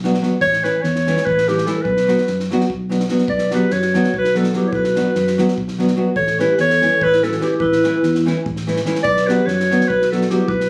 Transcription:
Already playing: fingered electric bass B1
0.04 nylon-string guitar F#3 B3 D4 F#4, snare
0.14 snare
0.21 nylon-string guitar F#3 B3 D4 F#4, snare
0.41 fingered electric bass A1, clarinet C#5, kick
0.53 snare
0.62 nylon-string guitar E3 A3 C#4 E4, clarinet B4, snare
0.82 fingered electric bass E2, clarinet C#5, snare
0.96 snare
1.07 nylon-string guitar E3 A3 C#4 E4, snare
1.17 snare
1.26 fingered electric bass A1, clarinet B4, kick
1.38 snare
1.48 nylon-string guitar E3 A3 C#4 E4, clarinet G4, snare
1.58 snare
1.66 nylon-string guitar E3 A3 C#4 E4, clarinet A4, snare
1.81 clarinet B4, kick
1.86 fingered electric bass B1
1.97 snare
2.07 nylon-string guitar F#3 B3 D4 F#4, snare
2.18 snare
2.27 fingered electric bass F#2, snare
2.40 snare
2.50 nylon-string guitar F#3 B3 D4 F#4, snare
2.61 snare
2.69 fingered electric bass B1, kick
2.89 nylon-string guitar F#3 B3 D4 F#4, snare
3.00 snare
3.09 nylon-string guitar F#3 B3 D4 F#4, snare
3.19 snare
3.27 fingered electric bass B1, vibraphone B4, clarinet D5, kick
3.39 snare
3.51 nylon-string guitar F#3 B3 D4 F#4, vibraphone G4, clarinet B4, snare
3.70 fingered electric bass F#2, vibraphone F#4, clarinet C#5, snare
3.82 snare
3.94 nylon-string guitar F#3 B3 D4 F#4, snare
4.04 snare
4.14 fingered electric bass B1, vibraphone F#4, kick
4.18 clarinet B4
4.25 snare
4.35 nylon-string guitar F#3 B3 D4 F#4, clarinet A4, snare
4.40 vibraphone F#4, snare
4.53 nylon-string guitar F#3 B3 D4 F#4, vibraphone E4, clarinet G4, snare
4.68 vibraphone A4, clarinet C#5
4.73 fingered electric bass B1, vibraphone F#4, clarinet B4, kick
4.84 snare
4.95 nylon-string guitar F#3 B3 D4 F#4, snare
5.15 fingered electric bass F#2, snare
5.27 snare
5.38 nylon-string guitar F#3 B3 D4 F#4, snare
5.48 snare
5.58 fingered electric bass B1, kick
5.68 snare
5.78 nylon-string guitar F#3 B3 D4 F#4, snare
5.88 snare
5.96 nylon-string guitar F#3 B3 D4 F#4
6.16 fingered electric bass A1, vibraphone A4, clarinet C#5, kick
6.27 snare
6.39 nylon-string guitar E3 A3 C#4 E4, vibraphone G4, clarinet B4, snare
6.58 fingered electric bass E2, vibraphone A4, clarinet C#5, snare
6.70 snare
6.82 nylon-string guitar E3 A3 C#4 E4, snare
7.01 fingered electric bass A1, vibraphone E4, clarinet B4, kick
7.13 snare
7.22 nylon-string guitar E3 A3 C#4 E4, vibraphone F#4, clarinet A4, snare
7.32 snare
7.40 nylon-string guitar E3 A3 C#4 E4, vibraphone E4, clarinet G4, snare
7.60 fingered electric bass A1, vibraphone E4, clarinet B4, kick
7.72 snare
7.84 nylon-string guitar E3 A3 C#4 E4, snare
8.03 fingered electric bass E2, snare
8.15 snare
8.26 nylon-string guitar E3 A3 C#4 E4, snare
8.46 fingered electric bass A1, kick
8.56 snare
8.67 nylon-string guitar E3 A3 C#4 E4, snare
8.76 snare
8.85 nylon-string guitar E3 A3 C#4 E4, snare
8.95 snare
9.03 fingered electric bass B1, vibraphone B4, clarinet D5, kick
9.17 snare
9.27 nylon-string guitar F#3 B3 D4 F#4, vibraphone G4, clarinet B4, snare
9.46 fingered electric bass F#2, vibraphone F#4, clarinet C#5, snare
9.60 snare
9.71 nylon-string guitar F#3 B3 D4 F#4, snare
9.81 snare
9.88 fingered electric bass B1, vibraphone F#4, clarinet B4, kick
10.02 snare
10.10 nylon-string guitar F#3 B3 D4 F#4, vibraphone F#4, clarinet A4, snare
10.22 snare
10.30 nylon-string guitar F#3 B3 D4 F#4, vibraphone E4, clarinet G4, snare
10.48 fingered electric bass B1, vibraphone F#4, clarinet B4, kick
10.60 snare

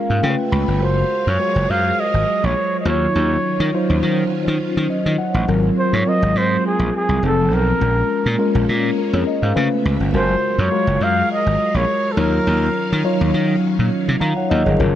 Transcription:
Already playing: string machine G#3 A#3 C#4, tine electric piano G#3 C#4 F4 A#4 F5
0.10 slap bass G#2
0.23 slap bass C#3, string machine C#3 A3 B3 E5 F5, tine electric piano A3 C#4 F4 A4 G5
0.30 tine electric piano B4
0.52 slap bass C#2, tine electric piano B5
0.68 slap bass G1
0.80 slap bass F#1, string machine F#3 G#4 A#4, tine electric piano G#3 F4 F#4 A#4, flugelhorn C5
1.27 slap bass F#2, flugelhorn C#5
1.39 tine electric piano G#3 F4 F#4 C5
1.56 slap bass F#1
1.70 slap bass F#2, flugelhorn F5
2.00 flugelhorn D#5
2.14 slap bass G#1
2.44 slap bass A#1, flugelhorn C#5
2.80 flugelhorn D#5
2.85 slap bass D#2, string machine D#3 F#3 C#4 F4, tine electric piano F#3 D#4 F4 C#5, flugelhorn C#5
3.15 slap bass D#2
3.60 slap bass D#3
3.74 tine electric piano F#3 D#4 F4 C5
3.90 slap bass D#2
4.03 slap bass D#3
4.48 slap bass D#3
4.77 slap bass D#3
4.90 tine electric piano D#5
5.06 slap bass D#3
5.18 tine electric piano F#5
5.34 slap bass A1
5.47 slap bass G#1, string machine F#3 G#3 C4, tine electric piano F#3 C4 F4 A#4
5.79 flugelhorn C5
5.93 slap bass G#2, flugelhorn C#5
6.06 tine electric piano F#3 C4 F4 A#4, flugelhorn D#5
6.22 slap bass G#1
6.35 slap bass G#2, flugelhorn C5
6.67 flugelhorn G#4
6.79 slap bass A#1
6.96 flugelhorn G#4
7.09 slap bass C2
7.22 slap bass F1, string machine F3 D#4 A4, tine electric piano F3 C4 D#4 G#4, flugelhorn A4
7.30 tine electric piano A4
7.52 slap bass B1, flugelhorn A#4
7.80 slap bass A#1, tine electric piano G#3 C#4 F4 A#4, string machine G#3 A#3 C#4
8.26 slap bass A#2
8.38 tine electric piano G#3 C#4 F4 A#4
8.55 slap bass A#1
8.69 slap bass A#2
8.98 tine electric piano F4 A#4
9.13 slap bass F2, tine electric piano G#4 C#5
9.27 tine electric piano A#4 D#5
9.42 slap bass G#2, tine electric piano C5 F5
9.55 string machine C#3 A3 B3 E5 F5, slap bass C#3, tine electric piano A3 C#4 F4 B4
9.85 slap bass C#2
10.00 slap bass G1
10.13 slap bass F#1, string machine F#3 G#4 A#4, tine electric piano G#3 F4 F#4 A#4, flugelhorn C5
10.58 slap bass F#2, flugelhorn C#5
10.71 tine electric piano G#3 F4 F#4 A#4
10.87 slap bass F#1
11.01 slap bass F#2, flugelhorn F5
11.32 flugelhorn D#5
11.46 slap bass G#1
11.74 slap bass A#1, flugelhorn C#5
12.12 flugelhorn A4
12.16 slap bass D#2, string machine D#3 F#3 C#4, tine electric piano F#3 D#4 F4 C#5, flugelhorn A#4
12.47 slap bass D#2
12.92 slap bass D#3
13.04 tine electric piano F#3 D#4 F4 C#5
13.21 slap bass D#2
13.34 slap bass D#3
13.79 slap bass A#2
14.08 slap bass C3
14.20 slap bass D#3, tine electric piano F5 A#5
14.37 tine electric piano C#5 F#5
14.50 slap bass D#2, tine electric piano A#4 D#5
14.65 slap bass G1, tine electric piano G#4 C#5
14.79 slap bass F#1, tine electric piano F#3 C#4 F4 A#4, string machine F#3 C#4 F4 A#4

